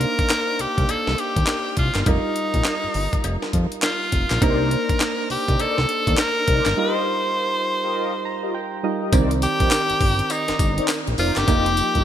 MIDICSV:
0, 0, Header, 1, 6, 480
1, 0, Start_track
1, 0, Key_signature, -3, "minor"
1, 0, Tempo, 588235
1, 1686, Time_signature, 4, 2, 24, 8
1, 9825, End_track
2, 0, Start_track
2, 0, Title_t, "Analog polysynth"
2, 0, Program_c, 0, 90
2, 3601, Note_on_c, 0, 63, 94
2, 3603, Note_on_c, 0, 70, 84
2, 3605, Note_on_c, 0, 72, 81
2, 3606, Note_on_c, 0, 74, 92
2, 3829, Note_off_c, 0, 63, 0
2, 3830, Note_off_c, 0, 70, 0
2, 3831, Note_off_c, 0, 72, 0
2, 3832, Note_off_c, 0, 74, 0
2, 4472, Note_on_c, 0, 63, 80
2, 4473, Note_on_c, 0, 70, 74
2, 4475, Note_on_c, 0, 72, 74
2, 4476, Note_on_c, 0, 74, 85
2, 4551, Note_off_c, 0, 63, 0
2, 4553, Note_off_c, 0, 70, 0
2, 4555, Note_off_c, 0, 72, 0
2, 4556, Note_off_c, 0, 74, 0
2, 4561, Note_on_c, 0, 63, 82
2, 4563, Note_on_c, 0, 70, 76
2, 4565, Note_on_c, 0, 72, 77
2, 4566, Note_on_c, 0, 74, 90
2, 4710, Note_off_c, 0, 63, 0
2, 4711, Note_off_c, 0, 70, 0
2, 4712, Note_off_c, 0, 72, 0
2, 4713, Note_off_c, 0, 74, 0
2, 4952, Note_on_c, 0, 63, 77
2, 4954, Note_on_c, 0, 70, 70
2, 4955, Note_on_c, 0, 72, 65
2, 4956, Note_on_c, 0, 74, 89
2, 5042, Note_off_c, 0, 63, 0
2, 5043, Note_off_c, 0, 70, 0
2, 5044, Note_off_c, 0, 72, 0
2, 5044, Note_off_c, 0, 74, 0
2, 5283, Note_on_c, 0, 63, 84
2, 5284, Note_on_c, 0, 70, 75
2, 5285, Note_on_c, 0, 72, 74
2, 5287, Note_on_c, 0, 74, 91
2, 5431, Note_off_c, 0, 63, 0
2, 5431, Note_off_c, 0, 70, 0
2, 5432, Note_off_c, 0, 72, 0
2, 5433, Note_off_c, 0, 74, 0
2, 5522, Note_on_c, 0, 65, 95
2, 5524, Note_on_c, 0, 67, 80
2, 5526, Note_on_c, 0, 70, 77
2, 5528, Note_on_c, 0, 75, 101
2, 5750, Note_off_c, 0, 65, 0
2, 5751, Note_off_c, 0, 67, 0
2, 5752, Note_off_c, 0, 70, 0
2, 5752, Note_off_c, 0, 75, 0
2, 6393, Note_on_c, 0, 65, 81
2, 6395, Note_on_c, 0, 67, 73
2, 6396, Note_on_c, 0, 70, 78
2, 6398, Note_on_c, 0, 75, 90
2, 6474, Note_off_c, 0, 65, 0
2, 6476, Note_off_c, 0, 67, 0
2, 6477, Note_off_c, 0, 70, 0
2, 6478, Note_off_c, 0, 75, 0
2, 6483, Note_on_c, 0, 65, 78
2, 6485, Note_on_c, 0, 67, 77
2, 6487, Note_on_c, 0, 70, 76
2, 6488, Note_on_c, 0, 75, 93
2, 6631, Note_off_c, 0, 65, 0
2, 6632, Note_off_c, 0, 67, 0
2, 6633, Note_off_c, 0, 70, 0
2, 6634, Note_off_c, 0, 75, 0
2, 6874, Note_on_c, 0, 65, 74
2, 6875, Note_on_c, 0, 67, 69
2, 6877, Note_on_c, 0, 70, 70
2, 6879, Note_on_c, 0, 75, 82
2, 6963, Note_off_c, 0, 65, 0
2, 6964, Note_off_c, 0, 67, 0
2, 6964, Note_off_c, 0, 70, 0
2, 6965, Note_off_c, 0, 75, 0
2, 7354, Note_on_c, 0, 65, 74
2, 7356, Note_on_c, 0, 67, 72
2, 7357, Note_on_c, 0, 70, 74
2, 7358, Note_on_c, 0, 75, 81
2, 7436, Note_off_c, 0, 70, 0
2, 7443, Note_off_c, 0, 65, 0
2, 7444, Note_off_c, 0, 67, 0
2, 7444, Note_on_c, 0, 63, 90
2, 7445, Note_off_c, 0, 75, 0
2, 7445, Note_on_c, 0, 70, 84
2, 7447, Note_on_c, 0, 72, 81
2, 7448, Note_on_c, 0, 74, 103
2, 7591, Note_off_c, 0, 63, 0
2, 7592, Note_off_c, 0, 70, 0
2, 7593, Note_off_c, 0, 72, 0
2, 7594, Note_off_c, 0, 74, 0
2, 7834, Note_on_c, 0, 63, 74
2, 7835, Note_on_c, 0, 70, 61
2, 7837, Note_on_c, 0, 72, 66
2, 7839, Note_on_c, 0, 74, 77
2, 7923, Note_off_c, 0, 63, 0
2, 7924, Note_off_c, 0, 70, 0
2, 7925, Note_off_c, 0, 72, 0
2, 7925, Note_off_c, 0, 74, 0
2, 8792, Note_on_c, 0, 63, 75
2, 8794, Note_on_c, 0, 70, 70
2, 8795, Note_on_c, 0, 72, 72
2, 8797, Note_on_c, 0, 74, 91
2, 8882, Note_off_c, 0, 63, 0
2, 8883, Note_off_c, 0, 70, 0
2, 8884, Note_off_c, 0, 72, 0
2, 8884, Note_off_c, 0, 74, 0
2, 9122, Note_on_c, 0, 63, 77
2, 9124, Note_on_c, 0, 70, 79
2, 9126, Note_on_c, 0, 72, 76
2, 9127, Note_on_c, 0, 74, 95
2, 9271, Note_off_c, 0, 63, 0
2, 9272, Note_off_c, 0, 70, 0
2, 9273, Note_off_c, 0, 72, 0
2, 9273, Note_off_c, 0, 74, 0
2, 9362, Note_on_c, 0, 65, 97
2, 9364, Note_on_c, 0, 67, 88
2, 9365, Note_on_c, 0, 70, 80
2, 9367, Note_on_c, 0, 75, 98
2, 9511, Note_off_c, 0, 65, 0
2, 9511, Note_off_c, 0, 67, 0
2, 9512, Note_off_c, 0, 70, 0
2, 9513, Note_off_c, 0, 75, 0
2, 9751, Note_on_c, 0, 65, 66
2, 9753, Note_on_c, 0, 67, 67
2, 9755, Note_on_c, 0, 70, 63
2, 9757, Note_on_c, 0, 75, 83
2, 9825, Note_off_c, 0, 65, 0
2, 9825, Note_off_c, 0, 67, 0
2, 9825, Note_off_c, 0, 70, 0
2, 9825, Note_off_c, 0, 75, 0
2, 9825, End_track
3, 0, Start_track
3, 0, Title_t, "Tenor saxophone"
3, 0, Program_c, 1, 66
3, 0, Note_on_c, 1, 70, 110
3, 500, Note_on_c, 1, 67, 96
3, 513, Note_off_c, 1, 70, 0
3, 742, Note_on_c, 1, 69, 101
3, 754, Note_off_c, 1, 67, 0
3, 979, Note_on_c, 1, 67, 97
3, 991, Note_off_c, 1, 69, 0
3, 1452, Note_off_c, 1, 67, 0
3, 1459, Note_on_c, 1, 65, 85
3, 1636, Note_off_c, 1, 65, 0
3, 1654, Note_on_c, 1, 65, 57
3, 1703, Note_on_c, 1, 63, 89
3, 1715, Note_off_c, 1, 65, 0
3, 2919, Note_off_c, 1, 63, 0
3, 3137, Note_on_c, 1, 65, 85
3, 3614, Note_on_c, 1, 70, 92
3, 3627, Note_off_c, 1, 65, 0
3, 4330, Note_off_c, 1, 70, 0
3, 4336, Note_on_c, 1, 67, 92
3, 4577, Note_on_c, 1, 69, 105
3, 4589, Note_off_c, 1, 67, 0
3, 5051, Note_off_c, 1, 69, 0
3, 5058, Note_on_c, 1, 70, 110
3, 5540, Note_on_c, 1, 72, 99
3, 5552, Note_off_c, 1, 70, 0
3, 6973, Note_off_c, 1, 72, 0
3, 7698, Note_on_c, 1, 67, 123
3, 8417, Note_on_c, 1, 63, 94
3, 8430, Note_off_c, 1, 67, 0
3, 8892, Note_off_c, 1, 63, 0
3, 9134, Note_on_c, 1, 65, 96
3, 9285, Note_on_c, 1, 67, 116
3, 9297, Note_off_c, 1, 65, 0
3, 9825, Note_off_c, 1, 67, 0
3, 9825, End_track
4, 0, Start_track
4, 0, Title_t, "Synth keys"
4, 0, Program_c, 2, 88
4, 0, Control_c, 2, 64, 127
4, 0, Note_on_c, 2, 58, 69
4, 0, Note_on_c, 2, 62, 60
4, 0, Note_on_c, 2, 63, 61
4, 0, Note_on_c, 2, 72, 72
4, 0, Note_on_c, 2, 74, 50
4, 0, Note_on_c, 2, 77, 63
4, 1652, Note_off_c, 2, 58, 0
4, 1655, Note_off_c, 2, 62, 0
4, 1658, Note_off_c, 2, 63, 0
4, 1661, Note_off_c, 2, 72, 0
4, 1680, Note_on_c, 2, 55, 67
4, 1688, Note_on_c, 2, 63, 60
4, 1694, Note_on_c, 2, 65, 60
4, 1697, Note_off_c, 2, 74, 0
4, 1697, Control_c, 2, 64, 0
4, 1701, Note_on_c, 2, 70, 70
4, 1703, Note_off_c, 2, 77, 0
4, 1835, Control_c, 2, 64, 127
4, 3570, Note_off_c, 2, 55, 0
4, 3574, Note_off_c, 2, 63, 0
4, 3577, Note_off_c, 2, 65, 0
4, 3581, Note_off_c, 2, 70, 0
4, 3601, Note_on_c, 2, 58, 65
4, 3608, Note_on_c, 2, 62, 64
4, 3615, Note_on_c, 2, 63, 60
4, 3617, Control_c, 2, 64, 0
4, 3621, Note_on_c, 2, 70, 60
4, 3675, Note_on_c, 2, 72, 76
4, 3680, Note_off_c, 2, 70, 0
4, 3753, Control_c, 2, 64, 127
4, 5491, Note_off_c, 2, 58, 0
4, 5494, Note_off_c, 2, 62, 0
4, 5498, Note_off_c, 2, 63, 0
4, 5523, Note_on_c, 2, 55, 62
4, 5528, Note_off_c, 2, 72, 0
4, 5529, Note_on_c, 2, 63, 65
4, 5536, Note_on_c, 2, 65, 60
4, 5538, Control_c, 2, 64, 0
4, 5542, Note_on_c, 2, 70, 77
4, 5684, Control_c, 2, 64, 127
4, 6734, Note_on_c, 2, 82, 75
4, 6953, Note_off_c, 2, 82, 0
4, 6973, Note_on_c, 2, 79, 71
4, 7172, Note_off_c, 2, 55, 0
4, 7175, Note_off_c, 2, 63, 0
4, 7178, Note_off_c, 2, 65, 0
4, 7181, Note_off_c, 2, 70, 0
4, 7193, Note_off_c, 2, 79, 0
4, 7208, Note_on_c, 2, 55, 63
4, 7211, Note_on_c, 2, 63, 61
4, 7212, Note_on_c, 2, 75, 75
4, 7215, Note_on_c, 2, 65, 59
4, 7217, Note_on_c, 2, 70, 69
4, 7433, Note_off_c, 2, 75, 0
4, 7443, Note_on_c, 2, 50, 64
4, 7447, Note_off_c, 2, 55, 0
4, 7449, Note_off_c, 2, 63, 0
4, 7450, Note_off_c, 2, 65, 0
4, 7450, Note_on_c, 2, 60, 73
4, 7452, Note_off_c, 2, 70, 0
4, 7456, Control_c, 2, 64, 0
4, 7457, Note_on_c, 2, 74, 77
4, 7463, Note_on_c, 2, 70, 88
4, 7496, Note_on_c, 2, 51, 83
4, 7511, Note_off_c, 2, 50, 0
4, 7603, Control_c, 2, 64, 127
4, 9335, Note_off_c, 2, 60, 0
4, 9339, Note_off_c, 2, 74, 0
4, 9342, Note_off_c, 2, 70, 0
4, 9358, Note_off_c, 2, 51, 0
4, 9362, Note_on_c, 2, 53, 69
4, 9368, Note_on_c, 2, 58, 64
4, 9375, Note_on_c, 2, 63, 65
4, 9378, Control_c, 2, 64, 0
4, 9382, Note_on_c, 2, 67, 77
4, 9505, Control_c, 2, 64, 127
4, 9825, Note_off_c, 2, 53, 0
4, 9825, Note_off_c, 2, 58, 0
4, 9825, Note_off_c, 2, 63, 0
4, 9825, Note_off_c, 2, 67, 0
4, 9825, End_track
5, 0, Start_track
5, 0, Title_t, "Analog synth bass"
5, 0, Program_c, 3, 38
5, 487, Note_on_c, 3, 36, 46
5, 547, Note_off_c, 3, 36, 0
5, 636, Note_on_c, 3, 36, 89
5, 701, Note_off_c, 3, 36, 0
5, 727, Note_on_c, 3, 36, 45
5, 787, Note_off_c, 3, 36, 0
5, 878, Note_on_c, 3, 36, 89
5, 942, Note_off_c, 3, 36, 0
5, 1115, Note_on_c, 3, 39, 88
5, 1180, Note_off_c, 3, 39, 0
5, 1447, Note_on_c, 3, 36, 85
5, 1555, Note_off_c, 3, 36, 0
5, 1598, Note_on_c, 3, 31, 96
5, 1662, Note_off_c, 3, 31, 0
5, 1685, Note_on_c, 3, 29, 118
5, 1793, Note_off_c, 3, 29, 0
5, 2074, Note_on_c, 3, 34, 94
5, 2139, Note_off_c, 3, 34, 0
5, 2317, Note_on_c, 3, 31, 49
5, 2352, Note_off_c, 3, 31, 0
5, 2407, Note_on_c, 3, 31, 102
5, 2515, Note_off_c, 3, 31, 0
5, 2646, Note_on_c, 3, 29, 103
5, 2754, Note_off_c, 3, 29, 0
5, 2885, Note_on_c, 3, 41, 102
5, 2993, Note_off_c, 3, 41, 0
5, 3368, Note_on_c, 3, 29, 85
5, 3475, Note_off_c, 3, 29, 0
5, 3516, Note_on_c, 3, 34, 96
5, 3581, Note_off_c, 3, 34, 0
5, 3606, Note_on_c, 3, 36, 104
5, 3887, Note_off_c, 3, 36, 0
5, 4326, Note_on_c, 3, 36, 48
5, 4386, Note_off_c, 3, 36, 0
5, 4475, Note_on_c, 3, 36, 88
5, 4540, Note_off_c, 3, 36, 0
5, 4566, Note_on_c, 3, 36, 50
5, 4626, Note_off_c, 3, 36, 0
5, 4716, Note_on_c, 3, 36, 85
5, 4781, Note_off_c, 3, 36, 0
5, 4955, Note_on_c, 3, 39, 101
5, 5020, Note_off_c, 3, 39, 0
5, 5288, Note_on_c, 3, 36, 82
5, 5395, Note_off_c, 3, 36, 0
5, 5437, Note_on_c, 3, 31, 91
5, 5501, Note_off_c, 3, 31, 0
5, 7448, Note_on_c, 3, 36, 117
5, 7728, Note_off_c, 3, 36, 0
5, 7837, Note_on_c, 3, 34, 103
5, 7901, Note_off_c, 3, 34, 0
5, 8079, Note_on_c, 3, 31, 52
5, 8114, Note_off_c, 3, 31, 0
5, 8167, Note_on_c, 3, 31, 89
5, 8339, Note_off_c, 3, 31, 0
5, 8559, Note_on_c, 3, 31, 50
5, 8594, Note_off_c, 3, 31, 0
5, 8645, Note_on_c, 3, 31, 97
5, 8818, Note_off_c, 3, 31, 0
5, 9038, Note_on_c, 3, 34, 94
5, 9102, Note_off_c, 3, 34, 0
5, 9127, Note_on_c, 3, 29, 106
5, 9235, Note_off_c, 3, 29, 0
5, 9278, Note_on_c, 3, 31, 92
5, 9342, Note_off_c, 3, 31, 0
5, 9367, Note_on_c, 3, 29, 109
5, 9647, Note_off_c, 3, 29, 0
5, 9756, Note_on_c, 3, 31, 106
5, 9820, Note_off_c, 3, 31, 0
5, 9825, End_track
6, 0, Start_track
6, 0, Title_t, "Drums"
6, 6, Note_on_c, 9, 42, 66
6, 88, Note_off_c, 9, 42, 0
6, 153, Note_on_c, 9, 42, 52
6, 154, Note_on_c, 9, 36, 84
6, 234, Note_off_c, 9, 42, 0
6, 236, Note_off_c, 9, 36, 0
6, 243, Note_on_c, 9, 39, 91
6, 245, Note_on_c, 9, 56, 60
6, 246, Note_on_c, 9, 42, 73
6, 247, Note_on_c, 9, 38, 111
6, 325, Note_off_c, 9, 39, 0
6, 326, Note_off_c, 9, 56, 0
6, 327, Note_off_c, 9, 42, 0
6, 329, Note_off_c, 9, 38, 0
6, 484, Note_on_c, 9, 42, 81
6, 566, Note_off_c, 9, 42, 0
6, 635, Note_on_c, 9, 36, 86
6, 635, Note_on_c, 9, 42, 48
6, 716, Note_off_c, 9, 36, 0
6, 717, Note_off_c, 9, 42, 0
6, 725, Note_on_c, 9, 42, 75
6, 726, Note_on_c, 9, 56, 66
6, 806, Note_off_c, 9, 42, 0
6, 808, Note_off_c, 9, 56, 0
6, 875, Note_on_c, 9, 38, 74
6, 957, Note_off_c, 9, 38, 0
6, 965, Note_on_c, 9, 42, 62
6, 1047, Note_off_c, 9, 42, 0
6, 1113, Note_on_c, 9, 36, 91
6, 1114, Note_on_c, 9, 42, 59
6, 1195, Note_off_c, 9, 36, 0
6, 1195, Note_off_c, 9, 42, 0
6, 1199, Note_on_c, 9, 39, 103
6, 1203, Note_on_c, 9, 38, 127
6, 1203, Note_on_c, 9, 42, 74
6, 1208, Note_on_c, 9, 56, 67
6, 1281, Note_off_c, 9, 39, 0
6, 1285, Note_off_c, 9, 38, 0
6, 1285, Note_off_c, 9, 42, 0
6, 1290, Note_off_c, 9, 56, 0
6, 1442, Note_on_c, 9, 42, 71
6, 1446, Note_on_c, 9, 36, 89
6, 1523, Note_off_c, 9, 42, 0
6, 1527, Note_off_c, 9, 36, 0
6, 1590, Note_on_c, 9, 39, 65
6, 1591, Note_on_c, 9, 42, 52
6, 1594, Note_on_c, 9, 38, 78
6, 1672, Note_off_c, 9, 39, 0
6, 1673, Note_off_c, 9, 42, 0
6, 1676, Note_off_c, 9, 38, 0
6, 1683, Note_on_c, 9, 42, 78
6, 1684, Note_on_c, 9, 36, 127
6, 1686, Note_on_c, 9, 56, 67
6, 1764, Note_off_c, 9, 42, 0
6, 1766, Note_off_c, 9, 36, 0
6, 1768, Note_off_c, 9, 56, 0
6, 1923, Note_on_c, 9, 42, 70
6, 2005, Note_off_c, 9, 42, 0
6, 2071, Note_on_c, 9, 42, 52
6, 2073, Note_on_c, 9, 36, 77
6, 2152, Note_off_c, 9, 42, 0
6, 2155, Note_off_c, 9, 36, 0
6, 2160, Note_on_c, 9, 39, 94
6, 2162, Note_on_c, 9, 42, 72
6, 2164, Note_on_c, 9, 38, 110
6, 2165, Note_on_c, 9, 56, 62
6, 2241, Note_off_c, 9, 39, 0
6, 2244, Note_off_c, 9, 42, 0
6, 2245, Note_off_c, 9, 38, 0
6, 2247, Note_off_c, 9, 56, 0
6, 2401, Note_on_c, 9, 46, 81
6, 2483, Note_off_c, 9, 46, 0
6, 2553, Note_on_c, 9, 42, 49
6, 2554, Note_on_c, 9, 36, 84
6, 2634, Note_off_c, 9, 42, 0
6, 2636, Note_off_c, 9, 36, 0
6, 2643, Note_on_c, 9, 42, 75
6, 2645, Note_on_c, 9, 56, 64
6, 2725, Note_off_c, 9, 42, 0
6, 2727, Note_off_c, 9, 56, 0
6, 2794, Note_on_c, 9, 38, 69
6, 2875, Note_off_c, 9, 38, 0
6, 2883, Note_on_c, 9, 42, 67
6, 2884, Note_on_c, 9, 36, 85
6, 2965, Note_off_c, 9, 36, 0
6, 2965, Note_off_c, 9, 42, 0
6, 3033, Note_on_c, 9, 42, 55
6, 3115, Note_off_c, 9, 42, 0
6, 3121, Note_on_c, 9, 39, 102
6, 3125, Note_on_c, 9, 38, 127
6, 3125, Note_on_c, 9, 42, 72
6, 3127, Note_on_c, 9, 56, 75
6, 3202, Note_off_c, 9, 39, 0
6, 3206, Note_off_c, 9, 42, 0
6, 3207, Note_off_c, 9, 38, 0
6, 3209, Note_off_c, 9, 56, 0
6, 3364, Note_on_c, 9, 42, 79
6, 3366, Note_on_c, 9, 36, 95
6, 3445, Note_off_c, 9, 42, 0
6, 3448, Note_off_c, 9, 36, 0
6, 3513, Note_on_c, 9, 39, 62
6, 3514, Note_on_c, 9, 42, 58
6, 3517, Note_on_c, 9, 38, 75
6, 3595, Note_off_c, 9, 39, 0
6, 3596, Note_off_c, 9, 42, 0
6, 3599, Note_off_c, 9, 38, 0
6, 3605, Note_on_c, 9, 36, 121
6, 3605, Note_on_c, 9, 42, 82
6, 3605, Note_on_c, 9, 56, 67
6, 3687, Note_off_c, 9, 36, 0
6, 3687, Note_off_c, 9, 42, 0
6, 3687, Note_off_c, 9, 56, 0
6, 3845, Note_on_c, 9, 42, 67
6, 3927, Note_off_c, 9, 42, 0
6, 3993, Note_on_c, 9, 42, 52
6, 3994, Note_on_c, 9, 36, 82
6, 4075, Note_off_c, 9, 42, 0
6, 4076, Note_off_c, 9, 36, 0
6, 4083, Note_on_c, 9, 39, 91
6, 4085, Note_on_c, 9, 56, 59
6, 4086, Note_on_c, 9, 42, 79
6, 4088, Note_on_c, 9, 38, 113
6, 4165, Note_off_c, 9, 39, 0
6, 4167, Note_off_c, 9, 42, 0
6, 4167, Note_off_c, 9, 56, 0
6, 4169, Note_off_c, 9, 38, 0
6, 4326, Note_on_c, 9, 46, 81
6, 4407, Note_off_c, 9, 46, 0
6, 4475, Note_on_c, 9, 36, 89
6, 4475, Note_on_c, 9, 42, 50
6, 4557, Note_off_c, 9, 36, 0
6, 4557, Note_off_c, 9, 42, 0
6, 4565, Note_on_c, 9, 42, 73
6, 4566, Note_on_c, 9, 56, 61
6, 4647, Note_off_c, 9, 42, 0
6, 4648, Note_off_c, 9, 56, 0
6, 4716, Note_on_c, 9, 38, 69
6, 4798, Note_off_c, 9, 38, 0
6, 4804, Note_on_c, 9, 42, 63
6, 4886, Note_off_c, 9, 42, 0
6, 4954, Note_on_c, 9, 36, 89
6, 4955, Note_on_c, 9, 42, 58
6, 5036, Note_off_c, 9, 36, 0
6, 5036, Note_off_c, 9, 42, 0
6, 5040, Note_on_c, 9, 39, 99
6, 5044, Note_on_c, 9, 38, 122
6, 5044, Note_on_c, 9, 42, 75
6, 5048, Note_on_c, 9, 56, 70
6, 5122, Note_off_c, 9, 39, 0
6, 5126, Note_off_c, 9, 38, 0
6, 5126, Note_off_c, 9, 42, 0
6, 5130, Note_off_c, 9, 56, 0
6, 5284, Note_on_c, 9, 42, 76
6, 5287, Note_on_c, 9, 36, 95
6, 5365, Note_off_c, 9, 42, 0
6, 5368, Note_off_c, 9, 36, 0
6, 5433, Note_on_c, 9, 39, 62
6, 5434, Note_on_c, 9, 42, 57
6, 5437, Note_on_c, 9, 38, 76
6, 5514, Note_off_c, 9, 39, 0
6, 5515, Note_off_c, 9, 42, 0
6, 5518, Note_off_c, 9, 38, 0
6, 7446, Note_on_c, 9, 54, 68
6, 7447, Note_on_c, 9, 36, 126
6, 7447, Note_on_c, 9, 42, 84
6, 7448, Note_on_c, 9, 56, 68
6, 7528, Note_off_c, 9, 42, 0
6, 7528, Note_off_c, 9, 54, 0
6, 7529, Note_off_c, 9, 36, 0
6, 7529, Note_off_c, 9, 56, 0
6, 7597, Note_on_c, 9, 42, 58
6, 7679, Note_off_c, 9, 42, 0
6, 7687, Note_on_c, 9, 54, 58
6, 7688, Note_on_c, 9, 42, 73
6, 7768, Note_off_c, 9, 54, 0
6, 7769, Note_off_c, 9, 42, 0
6, 7834, Note_on_c, 9, 42, 57
6, 7836, Note_on_c, 9, 36, 86
6, 7916, Note_off_c, 9, 42, 0
6, 7918, Note_off_c, 9, 36, 0
6, 7925, Note_on_c, 9, 39, 95
6, 7927, Note_on_c, 9, 42, 81
6, 7927, Note_on_c, 9, 56, 65
6, 7929, Note_on_c, 9, 38, 117
6, 7929, Note_on_c, 9, 54, 97
6, 8006, Note_off_c, 9, 39, 0
6, 8008, Note_off_c, 9, 42, 0
6, 8009, Note_off_c, 9, 56, 0
6, 8010, Note_off_c, 9, 38, 0
6, 8011, Note_off_c, 9, 54, 0
6, 8075, Note_on_c, 9, 42, 50
6, 8156, Note_off_c, 9, 42, 0
6, 8164, Note_on_c, 9, 46, 86
6, 8165, Note_on_c, 9, 36, 110
6, 8246, Note_off_c, 9, 46, 0
6, 8247, Note_off_c, 9, 36, 0
6, 8315, Note_on_c, 9, 42, 50
6, 8396, Note_off_c, 9, 42, 0
6, 8403, Note_on_c, 9, 54, 69
6, 8404, Note_on_c, 9, 42, 74
6, 8407, Note_on_c, 9, 56, 62
6, 8484, Note_off_c, 9, 54, 0
6, 8486, Note_off_c, 9, 42, 0
6, 8488, Note_off_c, 9, 56, 0
6, 8553, Note_on_c, 9, 42, 62
6, 8556, Note_on_c, 9, 38, 75
6, 8634, Note_off_c, 9, 42, 0
6, 8638, Note_off_c, 9, 38, 0
6, 8644, Note_on_c, 9, 42, 73
6, 8645, Note_on_c, 9, 36, 86
6, 8646, Note_on_c, 9, 54, 65
6, 8726, Note_off_c, 9, 36, 0
6, 8726, Note_off_c, 9, 42, 0
6, 8728, Note_off_c, 9, 54, 0
6, 8795, Note_on_c, 9, 42, 59
6, 8877, Note_off_c, 9, 42, 0
6, 8880, Note_on_c, 9, 39, 101
6, 8884, Note_on_c, 9, 38, 125
6, 8884, Note_on_c, 9, 42, 77
6, 8884, Note_on_c, 9, 54, 103
6, 8890, Note_on_c, 9, 56, 70
6, 8962, Note_off_c, 9, 39, 0
6, 8965, Note_off_c, 9, 54, 0
6, 8966, Note_off_c, 9, 38, 0
6, 8966, Note_off_c, 9, 42, 0
6, 8972, Note_off_c, 9, 56, 0
6, 9036, Note_on_c, 9, 42, 43
6, 9118, Note_off_c, 9, 42, 0
6, 9123, Note_on_c, 9, 46, 80
6, 9123, Note_on_c, 9, 54, 64
6, 9204, Note_off_c, 9, 46, 0
6, 9204, Note_off_c, 9, 54, 0
6, 9272, Note_on_c, 9, 39, 64
6, 9273, Note_on_c, 9, 42, 59
6, 9276, Note_on_c, 9, 38, 82
6, 9353, Note_off_c, 9, 39, 0
6, 9354, Note_off_c, 9, 42, 0
6, 9357, Note_off_c, 9, 38, 0
6, 9365, Note_on_c, 9, 42, 77
6, 9365, Note_on_c, 9, 54, 68
6, 9366, Note_on_c, 9, 36, 121
6, 9367, Note_on_c, 9, 56, 66
6, 9446, Note_off_c, 9, 54, 0
6, 9447, Note_off_c, 9, 36, 0
6, 9447, Note_off_c, 9, 42, 0
6, 9449, Note_off_c, 9, 56, 0
6, 9515, Note_on_c, 9, 42, 55
6, 9597, Note_off_c, 9, 42, 0
6, 9604, Note_on_c, 9, 42, 70
6, 9604, Note_on_c, 9, 54, 59
6, 9685, Note_off_c, 9, 54, 0
6, 9686, Note_off_c, 9, 42, 0
6, 9751, Note_on_c, 9, 42, 49
6, 9754, Note_on_c, 9, 36, 80
6, 9825, Note_off_c, 9, 36, 0
6, 9825, Note_off_c, 9, 42, 0
6, 9825, End_track
0, 0, End_of_file